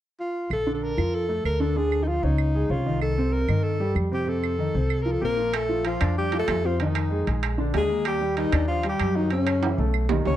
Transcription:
0.20 0.49 F4 medium
0.50 0.94 A#1 medium
0.50 0.74 A4 medium
0.50 claves medium
0.67 0.92 D3 medium
0.67 0.92 D4 medium
0.74 0.85 A4 medium
0.83 1.16 A#4 medium
0.97 1.41 F2 medium
0.97 1.23 F3 medium
0.97 1.23 F4 medium
0.97 claves medium
1.15 1.45 A4 medium
1.29 1.54 A3 medium
1.29 1.55 A4 medium
1.44 2.17 D2 medium
1.44 1.62 A#4 medium
1.44 claves medium
1.60 1.73 D3 medium
1.60 1.73 D4 medium
1.60 1.79 A4 medium
1.76 2.02 D3 medium
1.76 2.02 D4 medium
1.76 2.05 G#4 medium
1.92 claves medium
2.04 2.20 F3 medium
2.04 2.10 D#4 medium
2.04 2.20 F4 medium
2.08 2.25 F4 medium
2.23 2.67 C#2 medium
2.23 2.49 C#4 medium
2.23 2.72 D#4 medium
2.23 2.49 C#5 medium
2.38 claves medium
2.55 2.68 G#3 medium
2.55 2.68 G#4 medium
2.69 3.43 C2 medium
2.69 2.83 C#4 medium
2.69 3.01 F4 medium
2.69 2.83 C#5 medium
2.86 3.12 D#3 medium
2.86 3.12 D#4 medium
3.02 3.34 A4 medium
3.02 claves medium
3.18 3.43 C3 medium
3.18 3.44 C4 medium
3.33 3.65 A#4 medium
3.48 3.92 G2 medium
3.48 3.75 D#3 medium
3.48 3.75 D#4 medium
3.48 claves medium
3.63 3.95 A4 medium
3.80 4.06 G3 medium
3.80 4.06 G4 medium
3.95 4.69 F2 medium
3.95 claves medium
4.11 4.24 C3 medium
4.11 4.25 C4 medium
4.11 4.30 G4 medium
4.26 4.53 C3 medium
4.26 4.53 C4 medium
4.26 5.04 A4 medium
4.44 claves medium
4.59 4.72 D#3 medium
4.59 4.72 D#4 medium
4.75 5.18 C2 medium
4.75 5.01 C4 medium
4.75 5.01 C5 medium
4.90 claves medium
5.02 5.19 F3 medium
5.02 5.19 F4 medium
5.02 5.13 A#4 medium
5.12 5.23 A4 medium
5.21 5.95 A#1 medium
5.21 5.56 A#3 medium
5.21 5.35 C4 medium
5.21 5.23 G4 medium
5.21 5.57 A#4 medium
5.21 5.35 C5 medium
5.37 5.50 F3 medium
5.37 5.51 F4 medium
5.53 5.85 A3 medium
5.53 5.86 A4 medium
5.53 high timbale medium
5.53 claves medium
5.69 5.95 F3 medium
5.69 5.95 F4 medium
5.85 6.15 F3 medium
5.85 6.15 F4 medium
5.85 high timbale medium
6.00 6.45 F2 medium
6.00 6.26 D4 medium
6.00 6.26 D5 medium
6.00 high timbale medium
6.00 claves medium
6.18 6.37 G3 medium
6.18 6.37 G4 medium
6.32 6.58 F3 medium
6.32 6.58 F4 medium
6.32 high timbale medium
6.38 6.67 A3 medium
6.38 6.67 A4 medium
6.48 7.21 F2 medium
6.48 high timbale medium
6.48 low timbale medium
6.48 claves medium
6.64 6.79 F3 medium
6.64 6.77 C4 medium
6.64 6.80 F4 medium
6.64 6.77 C5 medium
6.80 7.39 D#3 medium
6.80 7.06 D#3 medium
6.80 7.06 D#4 medium
6.80 7.39 D#4 medium
6.80 high timbale medium
6.95 high timbale medium
6.95 claves medium
7.11 7.24 G#3 medium
7.11 7.24 G#4 medium
7.27 7.71 A#1 medium
7.27 7.52 G#3 medium
7.27 7.53 G#4 medium
7.27 high timbale medium
7.43 high timbale medium
7.43 claves medium
7.58 7.84 D3 medium
7.58 7.84 D4 medium
7.74 8.47 D#2 medium
7.74 8.04 G#3 medium
7.74 8.05 G#4 medium
7.74 high timbale medium
7.74 low timbale medium
7.89 8.15 A#3 medium
7.89 8.15 A#4 medium
8.05 8.35 G3 medium
8.05 8.36 G4 loud
8.05 high timbale medium
8.05 claves medium
8.21 8.47 G3 medium
8.21 8.47 G4 medium
8.37 8.67 D#3 medium
8.37 8.66 D#4 medium
8.37 high timbale medium
8.52 8.96 D#2 medium
8.52 8.78 D4 medium
8.52 8.79 D5 medium
8.52 high timbale medium
8.52 claves medium
8.68 8.88 F3 medium
8.68 8.88 F4 medium
8.83 9.10 G3 medium
8.83 9.10 G4 medium
8.83 high timbale medium
8.89 9.18 G3 medium
8.89 9.17 G4 medium
9.00 9.73 F#2 medium
9.00 high timbale medium
9.00 claves medium
9.16 9.31 D#3 medium
9.16 9.29 F#3 medium
9.16 9.31 D#4 medium
9.16 9.28 F#4 medium
9.30 9.57 C#3 medium
9.30 9.91 C#3 medium
9.30 9.57 C#4 medium
9.30 9.91 C#4 medium
9.30 high timbale medium
9.47 high timbale medium
9.47 claves medium
9.63 9.76 E3 medium
9.63 9.76 E4 medium
9.63 high timbale medium
9.78 10.22 B1 medium
9.78 10.05 A3 medium
9.78 10.05 A4 medium
9.94 claves medium
10.09 10.36 D#3 medium
10.09 10.36 D#4 medium
10.09 low timbale medium
10.25 10.37 C#2 medium
10.25 10.37 C#4 medium
10.25 10.37 C#5 medium
10.25 low timbale medium

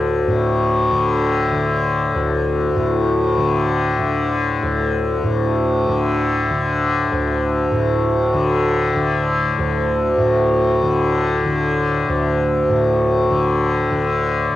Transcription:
0.00 2.14 D2 soft
0.00 0.27 A2 soft
0.00 0.91 D3 soft
0.28 2.75 A2 soft
0.91 1.52 D3 soft
1.52 3.37 D3 soft
2.15 4.62 D2 soft
2.75 5.23 A2 soft
3.37 3.98 D3 soft
3.98 5.87 D3 soft
4.63 7.11 D2 soft
5.23 7.71 A2 soft
5.87 6.50 D3 soft
6.50 8.33 D3 soft
7.12 9.58 D2 soft
7.71 10.17 A2 soft
8.33 8.95 D3 soft
8.95 10.82 D3 soft
9.58 12.08 D2 soft
10.18 12.69 A2 medium
10.82 11.45 D3 soft
11.45 13.30 D3 soft
12.08 14.53 D2 soft
12.69 14.56 A2 soft
13.30 13.90 D3 soft
13.90 14.56 D3 soft

